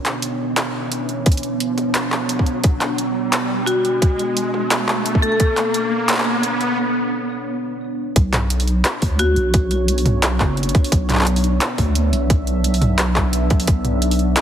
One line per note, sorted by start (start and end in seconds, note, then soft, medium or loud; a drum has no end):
0.00 6.74 B3 medium
0.00 6.74 D4 medium
0.00 6.74 C#5 medium
0.00 riser medium
0.06 clap medium
0.06 closed hi-hat soft
0.06 mid tom soft
0.22 closed hi-hat medium
0.57 clap loud
0.57 closed hi-hat medium
0.92 closed hi-hat medium
1.09 closed hi-hat soft
1.26 kick loud
1.26 closed hi-hat medium
1.32 closed hi-hat medium
1.37 closed hi-hat soft
1.43 closed hi-hat soft
1.60 closed hi-hat medium
1.78 closed hi-hat soft
1.78 mid tom medium
1.95 clap loud
1.95 closed hi-hat medium
2.12 clap medium
2.29 closed hi-hat medium
2.39 kick medium
2.46 closed hi-hat soft
2.64 kick loud
2.64 closed hi-hat medium
2.81 clap medium
2.81 closed hi-hat soft
2.81 mid tom soft
2.98 closed hi-hat medium
3.33 clap loud
3.33 closed hi-hat medium
3.66 4.16 F#4 loud
3.66 closed hi-hat medium
3.85 closed hi-hat soft
4.02 kick loud
4.02 closed hi-hat medium
4.19 closed hi-hat soft
4.37 closed hi-hat medium
4.54 mid tom medium
4.71 clap loud
4.71 closed hi-hat medium
4.88 clap medium
5.06 closed hi-hat medium
5.15 kick medium
5.22 5.29 A4 medium
5.22 closed hi-hat soft
5.32 5.37 A4 medium
5.40 kick loud
5.40 closed hi-hat medium
5.57 clap medium
5.57 closed hi-hat soft
5.57 mid tom soft
5.74 closed hi-hat medium
6.09 clap loud
6.09 closed hi-hat medium
6.12 clap medium
6.15 clap medium
6.18 clap medium
6.20 clap soft
6.23 clap soft
6.43 closed hi-hat medium
6.61 closed hi-hat soft
8.16 8.84 B1 loud
8.16 14.41 B3 medium
8.16 14.41 D4 medium
8.16 10.91 C#5 medium
8.16 kick loud
8.16 closed hi-hat medium
8.33 clap medium
8.33 closed hi-hat soft
8.33 mid tom soft
8.50 closed hi-hat medium
8.60 open hi-hat medium
8.68 closed hi-hat soft
8.85 clap loud
8.85 closed hi-hat medium
9.02 9.35 D2 loud
9.02 kick medium
9.02 open hi-hat medium
9.19 9.68 F#4 medium
9.19 closed hi-hat medium
9.36 10.04 B1 loud
9.36 closed hi-hat soft
9.54 kick loud
9.54 closed hi-hat medium
9.71 closed hi-hat soft
9.88 closed hi-hat medium
9.98 open hi-hat medium
10.05 10.39 B1 loud
10.05 closed hi-hat soft
10.05 mid tom medium
10.23 clap loud
10.23 closed hi-hat medium
10.40 10.73 F#1 loud
10.40 kick medium
10.40 clap medium
10.57 closed hi-hat soft
10.63 closed hi-hat soft
10.69 closed hi-hat medium
10.75 kick loud
10.75 closed hi-hat soft
10.84 open hi-hat medium
10.92 11.60 B1 medium
10.92 13.67 E5 medium
10.92 kick loud
10.92 closed hi-hat medium
11.10 clap soft
11.10 closed hi-hat soft
11.10 mid tom soft
11.13 clap soft
11.15 clap soft
11.19 clap soft
11.21 clap medium
11.24 clap medium
11.24 closed hi-hat medium
11.36 open hi-hat medium
11.44 closed hi-hat soft
11.61 clap loud
11.61 closed hi-hat medium
11.78 12.11 D2 loud
11.78 kick medium
11.78 open hi-hat medium
11.95 closed hi-hat medium
12.12 12.80 B1 medium
12.12 closed hi-hat soft
12.30 kick loud
12.30 closed hi-hat medium
12.47 closed hi-hat soft
12.64 closed hi-hat medium
12.74 open hi-hat medium
12.81 13.49 B1 loud
12.81 closed hi-hat soft
12.81 mid tom medium
12.98 clap loud
12.98 closed hi-hat medium
13.16 kick medium
13.16 clap medium
13.33 closed hi-hat medium
13.50 13.66 B1 medium
13.50 kick loud
13.50 closed hi-hat soft
13.60 open hi-hat medium
13.67 14.35 B1 loud
13.67 14.41 C#5 medium
13.67 kick loud
13.67 closed hi-hat medium
13.85 closed hi-hat soft
13.85 mid tom soft
14.02 closed hi-hat medium
14.11 open hi-hat medium
14.19 closed hi-hat soft
14.36 clap loud
14.36 closed hi-hat medium